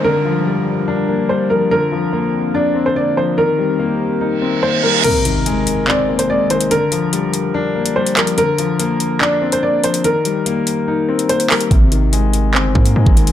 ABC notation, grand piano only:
X:1
M:4/4
L:1/8
Q:1/4=144
K:Cm
V:1 name="Grand piano" clef=bass
D, F, G,2 D B, G, F, | D, F, B,2 D C B, F, | E, G, B,2 E C B, G, | C, E, A,2 C B, A, E, |
D, F, G,2 D B, G, F, | D, F, B,2 D C B, F, | E, G, B,2 E C B, G, | C, E, A,2 C B, A, E, |]